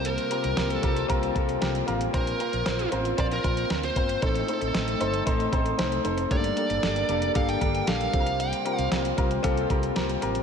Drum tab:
HH |xxxxxxxxxxxxxxxx|xxxxxxxxxxxxxxxx|xxxxxxxxxxxxxxxx|xxxxxxxxxxxxxxxx|
SD |----o-------o---|----o-------o---|----o-------o---|----o-------o---|
BD |------o-o-o-----|o-------o-o---o-|o-------o-o-----|o-------o-o---o-|

HH |xxxxxxxxxxxxxxxx|
SD |----o-------o---|
BD |------o-o-o-----|